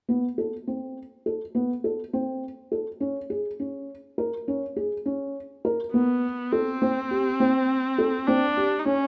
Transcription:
0.09 felt piano B3
0.38 felt piano A4
0.67 felt piano C4
1.26 felt piano A4
1.55 felt piano B3
1.84 felt piano A4
2.13 felt piano C4
2.72 felt piano A4
3.00 felt piano C#4
3.30 felt piano G#4
3.60 felt piano C#4
4.18 felt piano A#4
4.48 felt piano C#4
4.76 felt piano G#4
5.06 felt piano C#4
5.65 felt piano A#4
5.93 viola B3, felt piano B3
6.52 viola C4, felt piano A4
6.82 felt piano C4
7.11 felt piano G4
7.40 felt piano C4
7.98 felt piano A4
8.27 felt piano C4, viola D4
8.57 felt piano G4
8.79 viola D#4
8.85 viola C#4, felt piano C#4

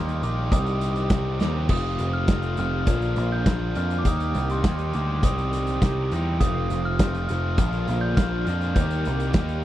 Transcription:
Already playing: picked electric bass D#2, overdriven electric guitar D#3 G3 A#3 D#4 G4, glockenspiel C6
0.09 closed hi-hat
0.22 picked electric bass A#1, overdriven electric guitar D#3 G3 A#3 D#4 G4, glockenspiel D6, closed hi-hat
0.51 picked electric bass C2, overdriven electric guitar C3 D#3 G3 C4 D#4 G4, glockenspiel D#6, kick, closed hi-hat
0.67 closed hi-hat
0.81 closed hi-hat
0.96 closed hi-hat
1.10 picked electric bass C2, overdriven electric guitar C3 D#3 G3 C4 D#4 G4, kick, snare, closed hi-hat
1.39 picked electric bass D#2, overdriven electric guitar C3 D#3 G3 C4 D#4 G4, snare, closed hi-hat
1.69 picked electric bass F1, overdriven electric guitar F2 C3 F3 A3 C4 F4, glockenspiel D#6, kick, crash
1.99 picked electric bass F1, closed hi-hat
2.13 glockenspiel F6
2.28 picked electric bass F1, overdriven electric guitar F2 C3 F3 A3 C4 F4, kick, snare, closed hi-hat
2.42 closed hi-hat
2.57 picked electric bass F1, overdriven electric guitar F2 C3 F3 A3 C4 F4, glockenspiel F6, closed hi-hat
2.87 picked electric bass A#1, overdriven electric guitar A#2 D3 F3 A#3 D4 F4, kick, closed hi-hat
3.02 closed hi-hat
3.16 picked electric bass A#1, closed hi-hat
3.32 glockenspiel G6
3.46 picked electric bass A#1, overdriven electric guitar A#2 D3 F3 A#3 D4 F4, kick, snare, closed hi-hat
3.75 picked electric bass F2, overdriven electric guitar A#2 D3 F3 A#3 D4 F4, glockenspiel F6, closed hi-hat
3.90 closed hi-hat
3.99 glockenspiel D6
4.05 picked electric bass D#2, overdriven electric guitar D#3 G3 A#3 D#4 G4, glockenspiel D#6, kick, closed hi-hat
4.20 closed hi-hat
4.35 picked electric bass C2, closed hi-hat
4.50 glockenspiel C6, closed hi-hat
4.64 picked electric bass D#2, overdriven electric guitar D#3 G3 A#3 D#4 G4, kick, snare, closed hi-hat
4.79 closed hi-hat
4.93 picked electric bass D2, overdriven electric guitar D#3 G3 A#3 D#4 G4, glockenspiel D6, closed hi-hat
5.23 picked electric bass C2, overdriven electric guitar C3 D#3 G3 C4 D#4 G4, glockenspiel D#6, kick, closed hi-hat
5.38 closed hi-hat
5.53 closed hi-hat
5.67 closed hi-hat
5.82 picked electric bass C2, overdriven electric guitar C3 D#3 G3 C4 D#4 G4, kick, snare, closed hi-hat
6.12 picked electric bass E2, overdriven electric guitar C3 D#3 G3 C4 D#4 G4, closed hi-hat
6.40 picked electric bass F1, overdriven electric guitar F2 C3 F3 A3 C4 F4, glockenspiel D#6, kick, closed hi-hat
6.70 picked electric bass F1, closed hi-hat
6.85 glockenspiel F6
6.99 picked electric bass F1, overdriven electric guitar F2 C3 F3 A3 C4 F4, kick, snare, closed hi-hat
7.15 closed hi-hat
7.28 picked electric bass F1, overdriven electric guitar F2 C3 F3 A3 C4 F4, glockenspiel F6, closed hi-hat
7.58 picked electric bass A#1, overdriven electric guitar A#2 D3 F3 A#3 D4 F4, kick, closed hi-hat
7.73 closed hi-hat
7.88 picked electric bass A#1, closed hi-hat
8.01 glockenspiel G6
8.16 picked electric bass A#1, overdriven electric guitar A#2 D3 F3 A#3 D4 F4, glockenspiel F6, kick, snare, closed hi-hat
8.45 picked electric bass F2, overdriven electric guitar A#2 D3 F3 A#3 D4 F4, glockenspiel F6, closed hi-hat
8.61 closed hi-hat
8.75 picked electric bass D#2, overdriven electric guitar D#3 G3 A#3 D#4 G4, glockenspiel G6, kick, closed hi-hat
8.91 closed hi-hat
9.05 picked electric bass C2, closed hi-hat
9.20 closed hi-hat
9.33 picked electric bass D#2, overdriven electric guitar D#3 G3 A#3 D#4 G4, kick, snare, closed hi-hat
9.49 closed hi-hat

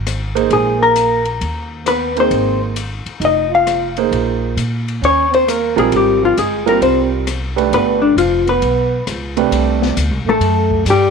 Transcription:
Already playing: upright bass G#1
0.07 cross-stick, hi-hat pedal, ride
0.35 upright piano A#3 D#4 G#4 C5, ride
0.50 upright bass A#1, trombone G#3, hollow-body jazz guitar G#4, ride
0.79 trombone A#3, hollow-body jazz guitar A#4
0.96 hi-hat pedal, ride
1.25 ride
1.41 upright bass D#2, ride
1.85 trombone B3, hollow-body jazz guitar B4, cross-stick, hi-hat pedal, ride
2.15 upright piano A#3 D#4 G#4 C5, trombone C4, ride
2.20 hollow-body jazz guitar C5
2.31 upright bass G#1, ride
2.76 hi-hat pedal, ride
3.06 muted upright bass stroke, ride
3.20 upright bass F1, trombone D#4, ride
3.25 hollow-body jazz guitar D#5
3.50 trombone F4
3.55 hollow-body jazz guitar F5
3.67 cross-stick, hi-hat pedal, ride
3.97 upright piano A#3 D#4 G#4 C5, ride
4.11 upright bass A#1, ride
4.56 upright bass A#2, hi-hat pedal, ride
4.88 ride
5.02 upright bass D#2, trombone C#4, hollow-body jazz guitar C#5, ride
5.30 trombone C4, ride
5.35 hollow-body jazz guitar C5
5.47 trombone A#3, hollow-body jazz guitar A#4, cross-stick, hi-hat pedal, ride
5.76 upright bass A#1, upright piano G3 C4 F4 A#4, trombone G#3, hollow-body jazz guitar G#4, ride
5.92 upright bass G#1, trombone G3, ride
5.97 hollow-body jazz guitar G4
6.21 trombone F3, hollow-body jazz guitar F4
6.36 upright bass G1, trombone G#3, hollow-body jazz guitar G#4, hi-hat pedal, ride
6.66 upright piano G3 C4 F4 A#4, trombone A#3, hollow-body jazz guitar A#4, ride
6.81 upright bass C2, trombone C4, hollow-body jazz guitar C5, ride
7.27 cross-stick, hi-hat pedal, ride
7.56 upright piano A3 D4 G4 B4, ride
7.71 upright bass G1, trombone B3, hollow-body jazz guitar B4, ride
8.02 trombone D3, hollow-body jazz guitar D4
8.17 upright bass F1, trombone F3, hollow-body jazz guitar F4, hi-hat pedal, ride
8.46 trombone B3, hollow-body jazz guitar B4, ride
8.62 upright bass B1, ride
9.07 upright bass C#2, cross-stick, hi-hat pedal, ride
9.37 upright piano C3 A3 D4 G4 B4, ride
9.51 upright bass C2, ride
9.82 snare
9.97 upright bass D2, hi-hat pedal, ride
10.11 upright bass C2
10.25 upright bass A1, trombone A3
10.29 hollow-body jazz guitar A3 A4
10.40 upright bass F#2, ride
10.71 kick
10.85 upright bass G2, trombone G3, hi-hat pedal, ride
10.90 hollow-body jazz guitar G3 G4

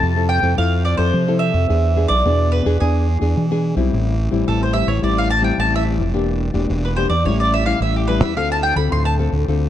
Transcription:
Already playing: nylon-string guitar C4 E4 A4, mandolin A5
0.03 fingered electric bass F2, nylon-string guitar C3
0.16 nylon-string guitar C4 E4 A4
0.29 mandolin G5
0.42 fingered electric bass F2, nylon-string guitar C4 E4 A4
0.56 fingered electric bass F2, nylon-string guitar F3 C4 E4 A4, mandolin F5
0.85 mandolin D5
0.97 fingered electric bass F2, nylon-string guitar C4 E4 A4, mandolin C5
1.14 nylon-string guitar C3, fingered electric bass F3
1.28 nylon-string guitar C4 E4 A4
1.39 mandolin E5
1.54 fingered electric bass F2
1.69 fingered electric bass E2, nylon-string guitar E3 B3 D4 G#4
1.96 nylon-string guitar B3 D4 G#4
2.08 fingered electric bass B1, mandolin D5
2.25 fingered electric bass E2, nylon-string guitar B2 B3 D4 G#4
2.52 mandolin B4
2.65 fingered electric bass E2, nylon-string guitar B3 D4 G#4
2.80 fingered electric bass E2, nylon-string guitar E3 B3 D4 G#4, mandolin G#4
3.21 fingered electric bass E2, nylon-string guitar B3 D4 G#4
3.36 nylon-string guitar B2, fingered electric bass E3
3.51 nylon-string guitar B3 D4 G#4
3.76 fingered electric bass B1, nylon-string guitar G3 C4 E4
3.92 fingered electric bass A1, nylon-string guitar A2
4.31 fingered electric bass A1, nylon-string guitar G3 C4 E4
4.47 fingered electric bass A1, nylon-string guitar E3, mandolin A4
4.63 mandolin C5
4.73 nylon-string guitar G3 C4 E4, mandolin E5
4.87 fingered electric bass A1, mandolin C#5
5.02 fingered electric bass A1, nylon-string guitar A2 G3 C4 E4, mandolin D5
5.18 mandolin F5
5.31 mandolin A5
5.42 nylon-string guitar G3 C4 E4, mandolin G5
5.57 fingered electric bass A1, nylon-string guitar E3, mandolin A5
5.76 mandolin E5
5.84 nylon-string guitar G3 C4 E4
5.98 fingered electric bass F1
6.14 fingered electric bass E1, nylon-string guitar E3 A#3 D4 G4
6.53 fingered electric bass E1, nylon-string guitar A#3 D4 G4
6.69 fingered electric bass E1, nylon-string guitar E3
6.85 mandolin B4
6.96 nylon-string guitar A#3 D4 G4, mandolin C5
7.10 fingered electric bass E2, mandolin D5
7.25 fingered electric bass A1, nylon-string guitar A2 G3 C#4 E4, mandolin C#5
7.40 mandolin D5
7.54 mandolin E5
7.66 nylon-string guitar G3 C#4 E4, mandolin F5
7.80 fingered electric bass A1, nylon-string guitar E3, mandolin E5
7.96 mandolin G4
8.08 nylon-string guitar G3 C#4 E4, mandolin B4
8.21 fingered electric bass E2, mandolin E5
8.36 fingered electric bass D2, nylon-string guitar D3 C4 F4 A4, mandolin F5
8.52 mandolin A5
8.63 mandolin G5
8.76 fingered electric bass D2, nylon-string guitar C4 F4 A4, mandolin B5
8.92 fingered electric bass D2, nylon-string guitar A2, mandolin C6
9.05 mandolin A5
9.19 nylon-string guitar C4 F4 A4
9.32 fingered electric bass D2
9.48 fingered electric bass D2, nylon-string guitar D3 C4 F4 A4

